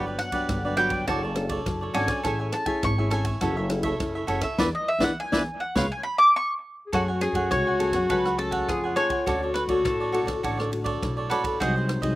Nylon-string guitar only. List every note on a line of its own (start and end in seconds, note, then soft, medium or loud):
0.00 0.47 G2 medium
0.00 0.30 F#3 medium
0.00 0.31 B3 medium
0.00 0.31 D4 medium
0.32 0.58 F#3 medium
0.32 0.58 B3 medium
0.32 0.58 D4 medium
0.50 1.05 D3 medium
0.64 0.74 F#3 medium
0.64 0.74 B3 medium
0.64 0.74 D4 medium
0.77 1.04 F#3 medium
0.77 1.05 B3 medium
0.77 1.05 D4 medium
1.07 1.63 F#3 medium
1.07 1.24 C#4 medium
1.07 1.25 D4 medium
1.07 1.25 A4 medium
1.36 1.90 C#4 medium
1.36 1.90 D4 medium
1.36 1.91 A4 medium
1.66 2.22 F#3 medium
1.94 2.19 C#4 medium
1.94 2.20 D4 medium
1.94 2.20 A4 medium
2.24 2.80 A3 medium
2.24 2.64 C#4 medium
2.24 2.64 E4 medium
2.24 2.64 G#4 medium
2.67 2.92 C#4 medium
2.67 2.92 E4 medium
2.67 2.93 G#4 medium
2.83 3.39 E3 medium
2.99 3.08 C#4 medium
2.99 3.08 E4 medium
2.99 3.09 G#4 medium
3.11 3.31 C#4 medium
3.11 3.31 E4 medium
3.11 3.31 G#4 medium
3.42 3.98 F#3 medium
3.42 3.66 C#4 medium
3.42 3.67 E4 medium
3.42 3.67 A4 medium
3.70 3.88 C#4 medium
3.70 3.88 E4 medium
3.70 3.88 A4 medium
4.00 4.56 C#3 medium
4.00 4.25 C#4 medium
4.00 4.25 E4 medium
4.00 4.25 A4 medium
4.28 4.46 C#4 medium
4.28 4.46 E4 medium
4.28 4.46 A4 medium
4.59 4.68 B3 medium
4.59 4.68 D4 medium
4.59 4.68 E4 medium
5.00 5.11 B3 loud
5.00 5.11 D4 loud
5.00 5.11 E4 medium
5.32 5.42 B3 loud
5.32 5.41 D4 loud
5.32 5.42 E4 loud
5.75 5.85 B3 loud
5.75 5.85 C#4 medium
5.75 5.85 F4 loud
6.93 7.49 F#3 medium
6.93 7.10 A3 medium
6.93 7.11 C#4 medium
6.93 7.11 G#4 medium
7.21 7.32 A3 medium
7.21 7.32 C#4 medium
7.21 7.32 G#4 medium
7.35 7.75 A3 medium
7.35 7.76 C#4 medium
7.35 7.76 G#4 medium
7.51 8.07 C#3 medium
7.80 8.34 A3 medium
7.80 8.34 C#4 medium
7.80 8.35 G#4 medium
8.11 8.66 F#3 medium
8.37 8.92 A3 medium
8.37 8.92 C#4 medium
8.37 8.93 G#4 medium
8.69 9.24 C#3 medium
8.96 9.14 A3 medium
8.96 9.14 C#4 medium
8.96 9.15 G#4 medium
9.26 9.82 D3 medium
9.26 9.54 A3 medium
9.26 9.54 C#4 medium
9.26 9.55 F#4 medium
9.68 10.09 A3 medium
9.68 10.09 C#4 medium
9.68 10.09 F#4 medium
9.85 10.41 A2 medium
10.13 10.68 A3 medium
10.13 10.68 C#4 medium
10.13 10.68 F#4 medium
10.43 10.99 D3 medium
10.72 11.27 A3 medium
10.72 11.27 F#4 medium
11.03 11.58 A2 medium
11.31 11.56 A3 medium
11.31 11.56 C#4 medium
11.31 11.57 F#4 medium
11.62 12.15 C3 medium
11.62 12.01 F#3 medium
11.62 12.01 G#3 medium
11.62 12.01 D#4 medium
12.03 12.15 F#3 medium
12.03 12.15 G#3 medium
12.03 12.15 D#4 medium